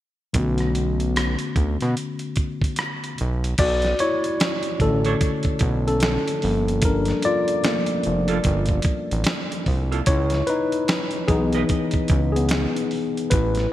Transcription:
0.33 B1 D3 A3 B3, kick, closed hi-hat
0.38 C#4 F#4
0.58 cross-stick, closed hi-hat
0.75 closed hi-hat
1.00 closed hi-hat
1.16 cross-stick, closed hi-hat
1.39 closed hi-hat
1.56 D2, kick, closed hi-hat
1.81 B2, cross-stick, closed hi-hat
1.97 closed hi-hat
2.19 closed hi-hat
2.36 kick, closed hi-hat
2.62 kick, closed hi-hat
2.76 cross-stick, closed hi-hat
3.04 closed hi-hat
3.18 B1, closed hi-hat
3.44 closed hi-hat
3.58 B1 F#4 D5, kick, closed hi-hat, crash
3.82 snare, closed hi-hat
3.99 E4 C#5, closed hi-hat
4.24 closed hi-hat
4.40 snare, closed hi-hat
4.63 closed hi-hat
4.80 A1 D3 A3 C#4 A4, kick, closed hi-hat
5.05 D4 A4 C#5, closed hi-hat
5.21 kick, closed hi-hat
5.43 kick, closed hi-hat
5.59 B1, kick, closed hi-hat
5.88 C#4 A4, closed hi-hat
6.00 snare, closed hi-hat
6.28 closed hi-hat
6.42 G1 F3 G3 A#3, open hi-hat
6.68 closed hi-hat
6.82 D4 A#4, kick, closed hi-hat
7.05 snare, closed hi-hat
7.22 F4 D5, closed hi-hat
7.48 closed hi-hat
7.64 F3 A3 A#3, snare, closed hi-hat
7.86 closed hi-hat
8.03 F1, closed hi-hat
8.28 A#3 F4 A4, closed hi-hat
8.44 G1, kick, closed hi-hat
8.66 kick, closed hi-hat
8.82 kick, closed hi-hat
9.11 A1, closed hi-hat
9.24 snare, closed hi-hat
9.52 closed hi-hat
9.66 C2, kick, open hi-hat
9.92 A#3 F4 A4, closed hi-hat
10.06 C#2 E4 C#5, kick, closed hi-hat
10.30 snare, closed hi-hat
10.47 D#4 B4, closed hi-hat
10.72 closed hi-hat
10.88 snare, closed hi-hat
11.11 closed hi-hat
11.28 B1 E3 B3 D#4 G#4, kick, closed hi-hat
11.53 E4 B4 D#5, closed hi-hat
11.69 kick, closed hi-hat
11.91 kick, closed hi-hat
12.08 C#2, kick, closed hi-hat
12.32 B3 G#4, closed hi-hat
12.49 snare, closed hi-hat
12.76 closed hi-hat
12.91 open hi-hat
13.17 closed hi-hat
13.30 A1 E4 B4, kick, closed hi-hat
13.55 snare, closed hi-hat

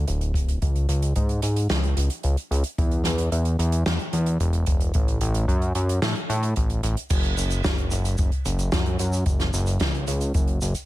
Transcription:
0.08 D1, closed hi-hat
0.21 closed hi-hat
0.34 D1, kick, closed hi-hat
0.48 closed hi-hat
0.62 C#2, kick, closed hi-hat
0.75 closed hi-hat
0.89 C#2, closed hi-hat
1.02 closed hi-hat
1.16 G#2, kick, closed hi-hat
1.29 closed hi-hat
1.42 G#2, closed hi-hat
1.56 closed hi-hat
1.69 C#2, snare, closed hi-hat
1.83 closed hi-hat
1.97 C#2, closed hi-hat
2.10 closed hi-hat
2.23 C#2, closed hi-hat
2.37 closed hi-hat
2.51 C#2, closed hi-hat
2.64 closed hi-hat
2.78 E2, kick, closed hi-hat
2.91 closed hi-hat
3.04 E2, snare, closed hi-hat
3.18 closed hi-hat
3.32 E2, closed hi-hat
3.45 closed hi-hat
3.59 E2, closed hi-hat
3.72 closed hi-hat
3.86 E2, snare, closed hi-hat
3.99 closed hi-hat
4.13 E2, closed hi-hat
4.26 closed hi-hat
4.40 E1, closed hi-hat
4.53 closed hi-hat
4.66 E1, kick, closed hi-hat
4.80 closed hi-hat
4.94 A1, kick, closed hi-hat
5.08 closed hi-hat
5.21 A1, closed hi-hat
5.34 closed hi-hat
5.48 F#2, kick, closed hi-hat
5.62 closed hi-hat
5.75 F#2, closed hi-hat
5.89 closed hi-hat
6.02 A2, snare, closed hi-hat
6.15 closed hi-hat
6.29 A2, closed hi-hat
6.43 closed hi-hat
6.56 A1, kick, closed hi-hat
6.70 closed hi-hat
6.83 A1, closed hi-hat
6.97 closed hi-hat
7.10 F#1, kick, closed hi-hat, crash, shaker
7.23 closed hi-hat
7.37 F#1, closed hi-hat, shaker
7.50 closed hi-hat, shaker
7.64 F#1, kick, snare, closed hi-hat, shaker
7.78 closed hi-hat
7.91 F#1, closed hi-hat, shaker
8.05 closed hi-hat, shaker
8.18 F#1, kick, closed hi-hat, shaker
8.32 closed hi-hat
8.45 F#1, closed hi-hat, shaker
8.59 closed hi-hat, shaker
8.72 F#2, kick, snare, closed hi-hat, shaker
8.86 closed hi-hat
8.99 F#2, closed hi-hat, shaker
9.13 closed hi-hat, shaker
9.26 F#1, kick, closed hi-hat, shaker
9.40 snare, closed hi-hat
9.54 F#1, closed hi-hat, shaker
9.66 closed hi-hat, shaker
9.80 C#2, kick, snare, closed hi-hat, shaker
9.94 closed hi-hat
10.07 C#2, closed hi-hat, shaker
10.21 closed hi-hat, shaker
10.34 F#1, kick, closed hi-hat, shaker
10.47 closed hi-hat
10.62 F#1, closed hi-hat, shaker
10.75 closed hi-hat, shaker

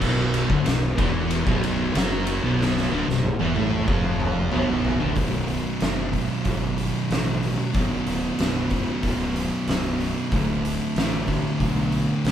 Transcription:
0.01 B0 B1 B2, kick, crash
0.34 ride
0.50 D1 D2 D3, kick
0.65 B0 B1, snare, ride
0.98 E1 E2 E3, kick, ride
1.31 ride
1.46 B0 B1 B2, kick
1.64 ride
1.95 F#1 F#2 F#3, snare, ride
2.27 ride
2.44 B0 B1 B2
2.61 snare
2.77 snare
2.92 D1 D2 D3
3.08 B0 B1, snare
3.23 B0 B1, high tom
3.39 E1 E2 E3
3.55 A1 A2 A3, high tom
3.72 mid tom
3.87 F1 F2 F3, kick
4.04 mid tom
4.20 mid tom
4.51 B0 B1 B2, mid tom
4.68 floor tom
4.85 floor tom
4.99 D1 D2 D3, floor tom
5.16 B0 B1 F#2 B2, kick, open hi-hat
5.48 open hi-hat
5.80 F#1, snare, open hi-hat
6.12 B1 F#2 B2, kick, open hi-hat
6.45 G1, kick, open hi-hat
6.78 open hi-hat
7.10 A1, snare, open hi-hat
7.43 open hi-hat
7.73 F#1 B1 F#2 B2, kick, open hi-hat
8.07 D1, open hi-hat
8.39 B0, snare, open hi-hat
8.70 B1 F#2 B2, kick, open hi-hat
9.03 D1, kick, open hi-hat
9.36 open hi-hat
9.67 B0, snare, open hi-hat
10.01 open hi-hat
10.31 D1 D2 A2 D3, kick, open hi-hat
10.65 open hi-hat
10.96 A1, snare, open hi-hat
11.26 D2 A2 D3, kick, open hi-hat
11.60 B1, kick, open hi-hat
11.92 open hi-hat
12.24 B1, snare, open hi-hat

